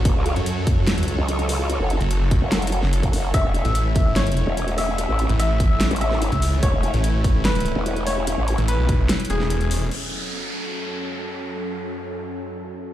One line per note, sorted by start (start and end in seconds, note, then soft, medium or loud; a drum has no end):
0.00 3.30 F#3 medium
0.00 3.30 F#4 medium
0.00 3.30 A4 medium
0.00 3.30 C#5 medium
0.05 0.14 F#1 loud
0.05 kick loud
0.05 closed hi-hat medium
0.16 0.35 C#2 loud
0.26 closed hi-hat medium
0.36 1.17 F#2 medium
0.36 closed hi-hat soft
0.46 closed hi-hat medium
0.67 kick loud
0.67 closed hi-hat medium
0.87 snare loud
0.87 closed hi-hat medium
0.98 closed hi-hat medium
1.03 closed hi-hat medium
1.08 closed hi-hat medium
1.18 1.78 C#2 loud
1.28 closed hi-hat medium
1.39 closed hi-hat soft
1.49 open hi-hat medium
1.70 closed hi-hat medium
1.80 1.99 F#1 loud
1.90 closed hi-hat medium
2.01 2.40 F#1 loud
2.01 closed hi-hat soft
2.11 closed hi-hat medium
2.31 kick loud
2.31 closed hi-hat medium
2.42 2.81 F#1 loud
2.52 snare loud
2.52 closed hi-hat medium
2.62 closed hi-hat medium
2.67 closed hi-hat medium
2.72 closed hi-hat medium
2.83 3.02 F#1 loud
2.83 snare soft
2.93 closed hi-hat medium
3.03 3.12 F#1 loud
3.03 kick medium
3.03 closed hi-hat soft
3.13 3.32 F#1 loud
3.13 open hi-hat medium
3.34 3.43 A1 loud
3.34 9.88 A3 medium
3.34 9.88 C#4 medium
3.34 9.88 E4 medium
3.34 4.08 E5 loud
3.34 kick loud
3.34 closed hi-hat medium
3.44 3.63 E1 loud
3.54 closed hi-hat medium
3.65 4.45 A1 loud
3.65 closed hi-hat soft
3.75 closed hi-hat medium
3.96 kick loud
3.96 closed hi-hat medium
4.16 4.70 C#5 loud
4.16 snare loud
4.16 closed hi-hat medium
4.27 closed hi-hat soft
4.32 closed hi-hat medium
4.37 closed hi-hat medium
4.47 5.07 E1 loud
4.57 closed hi-hat medium
4.68 closed hi-hat soft
4.78 5.31 E5 medium
4.78 open hi-hat medium
4.98 closed hi-hat medium
5.09 5.28 A1 loud
5.19 closed hi-hat soft
5.29 5.89 A1 loud
5.29 closed hi-hat soft
5.40 5.93 E5 loud
5.40 closed hi-hat medium
5.60 kick loud
5.60 closed hi-hat medium
5.81 snare loud
5.81 closed hi-hat medium
5.91 6.30 A1 medium
5.91 closed hi-hat soft
5.96 closed hi-hat medium
6.01 6.55 E5 medium
6.01 closed hi-hat medium
6.12 snare soft
6.22 closed hi-hat medium
6.32 6.61 C#2 loud
6.32 kick medium
6.32 closed hi-hat soft
6.42 open hi-hat medium
6.63 6.72 A1 loud
6.63 7.37 C#5 loud
6.63 kick loud
6.63 closed hi-hat medium
6.73 6.92 E1 loud
6.83 closed hi-hat medium
6.94 7.74 A1 loud
6.94 closed hi-hat soft
7.04 closed hi-hat medium
7.24 kick loud
7.24 closed hi-hat medium
7.45 7.98 B4 loud
7.45 snare loud
7.45 closed hi-hat medium
7.55 closed hi-hat soft
7.60 closed hi-hat medium
7.66 closed hi-hat medium
7.76 8.36 E1 loud
7.86 closed hi-hat medium
7.96 closed hi-hat soft
8.06 8.60 C#5 loud
8.06 open hi-hat loud
8.27 closed hi-hat medium
8.37 8.56 A1 loud
8.48 closed hi-hat medium
8.58 8.77 A1 loud
8.58 closed hi-hat soft
8.68 9.22 B4 medium
8.68 closed hi-hat medium
8.79 9.08 B1 medium
8.89 kick loud
8.89 closed hi-hat medium
9.09 snare loud
9.09 closed hi-hat medium
9.20 closed hi-hat soft
9.25 closed hi-hat medium
9.30 9.90 E1 loud
9.30 9.83 G#4 loud
9.30 closed hi-hat medium
9.40 snare soft
9.50 closed hi-hat medium
9.61 closed hi-hat soft
9.71 open hi-hat loud
9.91 12.94 F#2 medium
9.91 12.94 F#3 medium
9.91 12.94 C#4 medium
9.91 12.94 A4 medium
9.91 crash medium
9.91 downlifter medium